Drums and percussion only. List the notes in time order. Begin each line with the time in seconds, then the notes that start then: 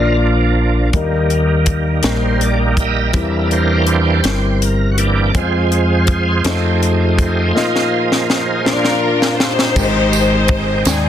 0.93 kick, closed hi-hat
1.30 closed hi-hat
1.66 kick, closed hi-hat
2.03 snare, closed hi-hat
2.41 closed hi-hat
2.77 kick, closed hi-hat
3.13 kick, closed hi-hat
3.51 closed hi-hat
3.87 closed hi-hat
4.24 snare, closed hi-hat
4.62 closed hi-hat
4.98 closed hi-hat
5.35 kick, closed hi-hat
5.72 closed hi-hat
6.07 kick, closed hi-hat
6.45 snare, closed hi-hat
6.83 closed hi-hat
7.19 kick, closed hi-hat
7.57 snare
7.76 snare
8.12 snare
8.30 snare
8.66 snare
8.85 snare
9.22 snare
9.40 snare
9.59 snare
9.76 kick, crash, tambourine
10.13 ride, tambourine
10.48 kick, ride
10.85 snare, ride, tambourine